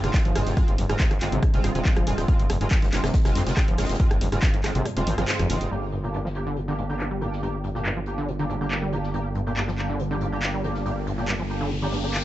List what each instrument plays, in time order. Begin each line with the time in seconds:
Already playing: ambient pad G2 D3
0.04 fm bass F1, acid bass C3, analog polysynth G#3 C4 F4, cross-stick, closed hi-hat
0.14 kick, snare, clap, closed hi-hat
0.25 fm bass F1, acid bass F3, closed hi-hat
0.35 fm bass F1, acid bass D#2, analog polysynth G#3 C4 F4, cross-stick, closed hi-hat, open hi-hat
0.46 fm bass F1, snare, closed hi-hat
0.57 acid bass F2, analog polysynth G#3 C4 F4, kick, cross-stick, closed hi-hat
0.68 fm bass F1, closed hi-hat
0.78 fm bass F1, acid bass F2, closed hi-hat, open hi-hat
0.89 fm bass F1, acid bass G#2, analog polysynth G#3 C4 F4, cross-stick, snare, closed hi-hat
1.00 acid bass F2, kick, snare, clap, closed hi-hat
1.11 fm bass G1, acid bass D#3, cross-stick, closed hi-hat
1.21 fm bass G1, analog polysynth G#3 C4 F4, clap, closed hi-hat, open hi-hat
1.32 fm bass G1, acid bass C3, closed hi-hat
1.43 acid bass G#2, kick, cross-stick, closed hi-hat
1.54 fm bass D#1, acid bass C3, analog polysynth G#3 C4 F4, closed hi-hat
1.64 fm bass D#1, acid bass G2, cross-stick, closed hi-hat, open hi-hat
1.75 fm bass D#1, acid bass C3, analog polysynth G#3 C4 F4, closed hi-hat
1.85 kick, snare, clap, closed hi-hat
1.96 fm bass D#1, acid bass F3, cross-stick, closed hi-hat
2.07 fm bass D#1, acid bass D#2, analog polysynth G#3 C4 F4, closed hi-hat, open hi-hat
2.18 fm bass D#1, cross-stick, snare, closed hi-hat
2.28 acid bass F2, analog polysynth G#3 C4 F4, kick, closed hi-hat
2.39 fm bass F1, closed hi-hat
2.49 fm bass F1, acid bass F2, cross-stick, closed hi-hat, open hi-hat
2.61 fm bass F1, acid bass G#2, analog polysynth G#3 C4 F4, closed hi-hat
2.71 acid bass F2, kick, cross-stick, snare, clap, closed hi-hat
2.82 fm bass F1, acid bass D#3, snare, closed hi-hat
2.93 fm bass F1, analog polysynth G#3 C4 F4, snare, clap, closed hi-hat, open hi-hat
3.04 fm bass F1, acid bass C3, cross-stick, snare, closed hi-hat
3.13 acid bass G#2, kick, snare, closed hi-hat
3.25 fm bass F1, acid bass C3, analog polysynth G#3 C4 F4, cross-stick, snare, closed hi-hat
3.35 fm bass F2, acid bass G2, snare, closed hi-hat, open hi-hat
3.46 fm bass F1, acid bass C3, analog polysynth G#3 C4 F4, snare, closed hi-hat
3.57 kick, cross-stick, snare, clap, closed hi-hat
3.68 fm bass F1, acid bass F3, closed hi-hat
3.78 fm bass F1, acid bass D#2, analog polysynth G#3 C4 F4, cross-stick, snare, closed hi-hat, open hi-hat
3.84 snare, closed hi-hat
3.89 fm bass F1, snare, closed hi-hat
3.94 snare, closed hi-hat
4.00 acid bass F2, analog polysynth G#3 C4 F4, kick, closed hi-hat
4.11 fm bass F1, cross-stick, closed hi-hat
4.21 fm bass F1, acid bass F2, closed hi-hat, open hi-hat
4.32 fm bass F1, acid bass G#2, analog polysynth G#3 C4 F4, cross-stick, snare, closed hi-hat
4.43 acid bass F2, kick, snare, clap, closed hi-hat
4.54 fm bass G1, acid bass D#3, closed hi-hat
4.64 fm bass G1, analog polysynth G#3 C4 F4, cross-stick, clap, closed hi-hat, open hi-hat
4.75 fm bass G1, acid bass C3, closed hi-hat
4.85 acid bass G#2, cross-stick, closed hi-hat
4.96 fm bass D#1, acid bass C3, analog polysynth G#3 C4 F4, closed hi-hat
5.07 fm bass G#1, acid bass F3, closed hi-hat, open hi-hat
5.18 fm bass G#1, acid bass F3, analog polysynth G#3 C4 F4, cross-stick, closed hi-hat
5.28 snare, clap, closed hi-hat
5.39 fm bass F1, acid bass F2, cross-stick, closed hi-hat
5.50 fm bass F1, acid bass F3, analog polysynth G#3 C4 F4, closed hi-hat, open hi-hat
5.60 fm bass F1, snare, closed hi-hat
5.71 fm bass G1, ambient pad G2 D3, acid bass G2, analog polysynth A#3 D4 G4, closed hi-hat
5.92 acid bass G2, closed hi-hat
6.04 acid bass A#2, analog polysynth A#3 D4 G4, closed hi-hat
6.14 acid bass G2, clap, closed hi-hat
6.25 acid bass F3, snare
6.35 analog polysynth A#3 D4 G4, clap, closed hi-hat
6.47 acid bass D3
6.57 acid bass A#2, closed hi-hat
6.68 acid bass D3, analog polysynth A#3 D4 G4
6.78 acid bass G#2, closed hi-hat
6.89 acid bass D3, analog polysynth A#3 D4 G4
7.00 clap, closed hi-hat
7.11 acid bass G3
7.21 acid bass F2, analog polysynth A#3 D4 G4, closed hi-hat
7.33 snare
7.43 acid bass G2, analog polysynth A#3 D4 G4, closed hi-hat
7.64 acid bass G2, closed hi-hat
7.75 acid bass A#2, analog polysynth A#3 D4 G4, snare
7.85 acid bass G2, clap, closed hi-hat
7.96 acid bass F3
8.06 analog polysynth A#3 D4 G4, closed hi-hat
8.18 acid bass D3
8.28 acid bass A#2, closed hi-hat
8.39 acid bass D3, analog polysynth A#3 D4 G4, closed hi-hat
8.50 acid bass G#2, closed hi-hat
8.61 acid bass D3, analog polysynth A#3 D4 G4
8.71 clap, closed hi-hat
8.82 acid bass G3
8.92 acid bass F2, analog polysynth A#3 D4 G4, closed hi-hat
9.03 snare
9.14 acid bass G2, analog polysynth A#3 D4 G4, closed hi-hat, riser
9.35 acid bass G2, closed hi-hat
9.47 acid bass A#2, analog polysynth A#3 D4 G4, closed hi-hat
9.56 acid bass G2, clap, closed hi-hat
9.68 acid bass F3, snare
9.78 analog polysynth A#3 D4 G4, clap, closed hi-hat
9.89 acid bass D3
10.00 acid bass A#2, closed hi-hat
10.11 acid bass D3, analog polysynth A#3 D4 G4
10.21 acid bass G#2, closed hi-hat
10.32 acid bass D3, analog polysynth A#3 D4 G4
10.42 clap, closed hi-hat
10.54 acid bass G3
10.64 acid bass F2, analog polysynth A#3 D4 G4, closed hi-hat
10.75 snare
10.85 acid bass G2, analog polysynth A#3 D4 G4, closed hi-hat
11.07 acid bass G2, closed hi-hat
11.18 acid bass A#2, analog polysynth A#3 D4 G4, snare
11.28 acid bass G2, clap, closed hi-hat
11.39 acid bass F3
11.50 analog polysynth A#3 D4 G4, closed hi-hat
11.61 acid bass D3
11.71 acid bass A#2, closed hi-hat
11.82 acid bass D3, analog polysynth A#3 D4 G4
11.92 acid bass G#2, snare, closed hi-hat
12.04 acid bass D3, analog polysynth A#3 D4 G4
12.14 clap, closed hi-hat